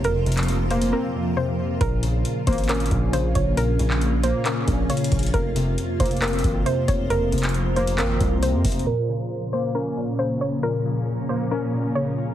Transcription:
Already playing: F2 C3 F3 A#3 C4 F4 A#4 C5
0.04 F#1 F2 A#4, closed hi-hat
0.15 F1
0.26 F1 C3, closed hi-hat
0.32 closed hi-hat
0.37 clap, closed hi-hat
0.43 closed hi-hat
0.48 closed hi-hat
0.71 A#3 C5, closed hi-hat
0.82 closed hi-hat
0.92 C4 A#4
1.15 F2
1.37 C3 C5
1.81 A#1 A#2 A#3 C#4 A#4, kick, closed hi-hat
2.03 C#3, closed hi-hat
2.25 closed hi-hat
2.47 G#1 A#3 C5, kick, closed hi-hat
2.53 closed hi-hat
2.58 closed hi-hat
2.64 closed hi-hat
2.69 C#4 A#4, clap, closed hi-hat
2.75 closed hi-hat
2.80 closed hi-hat
2.86 closed hi-hat
2.91 A#1 A#2, kick, closed hi-hat
3.13 C#3 C5, closed hi-hat
3.35 A#1 C#5, kick, closed hi-hat
3.57 A#2 A#4, closed hi-hat
3.79 A#1 C#3, closed hi-hat
3.90 clap
4.01 closed hi-hat
4.23 A#3 C5, closed hi-hat
4.46 C#4 A#4, clap, closed hi-hat
4.67 A#1 A#2, kick, closed hi-hat
4.90 C#3 C#5, closed hi-hat
4.97 closed hi-hat
5.04 closed hi-hat
5.12 A#1, kick, closed hi-hat
5.19 closed hi-hat
5.23 closed hi-hat
5.26 closed hi-hat
5.34 F1 F2 F3 A#4 C5, kick, closed hi-hat
5.56 C3, closed hi-hat
5.78 closed hi-hat
6.00 F1 A#3 C5, kick, closed hi-hat
6.06 closed hi-hat
6.11 closed hi-hat
6.17 closed hi-hat
6.22 C4 A#4, clap, closed hi-hat
6.28 closed hi-hat
6.33 closed hi-hat
6.39 closed hi-hat
6.44 G#1 F2, kick, closed hi-hat
6.66 C3 C5, closed hi-hat
6.88 F1 C#5, kick, closed hi-hat
7.10 F#1 F2 A#4, closed hi-hat
7.21 F1
7.32 F1 C3, closed hi-hat
7.38 closed hi-hat
7.43 clap, closed hi-hat
7.49 closed hi-hat
7.54 closed hi-hat
7.76 A#3 C5, closed hi-hat
7.87 closed hi-hat
7.98 G#1 C4 A#4, clap, closed hi-hat
8.20 C2 F2, kick, closed hi-hat
8.43 C3 C5, closed hi-hat
8.54 F2
8.65 F1, kick, closed hi-hat, open hi-hat
8.72 closed hi-hat
8.79 closed hi-hat
8.87 A#2 F3 C#4 A#4
9.09 C#3
9.53 A#3 C5
9.75 C#4 A#4
9.97 A#2
10.19 C#3 C5
10.41 C#5
10.63 A#2 A#4
10.86 C#3
11.29 A#3 C5
11.51 C#4 A#4
11.73 A#2
11.95 C#3 C#5

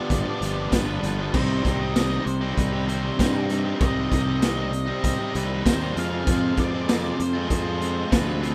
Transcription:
Already playing: F3 G3 B3 D4 F4 G4 D5 F5
0.09 G1 D3 F3 B3 D4, kick, closed hi-hat
0.26 F3 G3 B3 G4
0.40 G1 D3 F3 G3 B3 D4 G4, closed hi-hat
0.69 G1 G2 D3 F3 B4, kick, snare, closed hi-hat, tambourine
0.73 G3 B3 D4 G4
0.87 F3 G3 B3 D4 G4
1.00 G1 D3 F3 B4, closed hi-hat
1.05 G3 B3 D4 G4
1.18 F3 G3 B3 D4 G4
1.32 C2 C3 D#3 G3 C4 D#4 G4 C5 G5, kick, crash
1.36 C4 G4
1.63 C2 C3 G3 C4 D#4, kick, closed hi-hat
1.79 G3 C4 G4 D#5
1.95 C3 D#3 G3 C4 D#4 G4, snare, closed hi-hat, tambourine
2.10 G3 C4 D#4 G4
2.25 C2 C5, muted overdriven electric guitar stroke, closed hi-hat
2.41 G3 C4 D#4 G4
2.56 C2 C3 G3 C4 D#4 B4, kick, closed hi-hat
2.73 G3 C4 G4
2.86 C3 D#3 G3 C4 D#4 G4 C5, closed hi-hat
3.18 G2 C3 D#3 G3 C4 D#4 G4, kick, snare, closed hi-hat, tambourine
3.33 G3 C4 D#4 G4
3.48 C3 D#3 G3 C4 D#4, closed hi-hat
3.52 G4
3.62 D#4 G4
3.67 G3 C4
3.80 C2 C3 D#3 G3 C4 D#4 G4 D#5 F5, kick, closed hi-hat
4.08 C2 C3 G3 C4 D#4, kick
4.12 closed hi-hat
4.27 G3 C4 G4
4.42 C3 D#3 G3 C4 D#4 G4, snare, closed hi-hat, tambourine
4.55 C4 D#4 G4
4.60 G3
4.73 muted overdriven electric guitar stroke, closed hi-hat
4.86 C4 D#4 G4
4.90 G3
5.01 C2 C3 G3 C4 D#4 D#5, kick, closed hi-hat
5.18 G3 C4 G4
5.31 C2 C3 D#3 G3 D#4, closed hi-hat
5.36 C4 G4 B4
5.65 D#2 C3 D#3 G3 C4 D#4 G4 C5, kick, snare, closed hi-hat, tambourine
5.79 D#4 G4
5.84 G3 C4
5.96 F2 C3 F3 G#3 C4 F4 G#4 F5, closed hi-hat
6.10 G#3 C4 F4 G#4
6.15 F3
6.27 F2 C3 F3 G#3 C4 F4 G#4, kick, closed hi-hat
6.57 F2 F3 G#3 C4 F4 D5, kick, closed hi-hat
6.74 F3 G#3 C4 G#4
6.89 F2 C3 F3 G#3 C4 F4 G#4, snare, closed hi-hat, tambourine
7.02 C4 F4 G#4
7.07 F3 G#3
7.20 F2 C5, muted overdriven electric guitar stroke, closed hi-hat
7.33 G#3 C4 F4 G#4
7.38 F3
7.48 F2 F3 G#3 C4 F4, kick, closed hi-hat
7.53 C5
7.65 F3 G#3 C4 G#4
7.81 F3 G#3 C4 F4 G#4, closed hi-hat
8.09 D2 F2 C3 F3 F4 B4, kick, snare, closed hi-hat, tambourine
8.13 F3 G#3 C4 G#4
8.25 C4 F4 G#4
8.30 F3 G#3
8.42 F3 G#3 C4 F4 B4, closed hi-hat
8.46 G#4

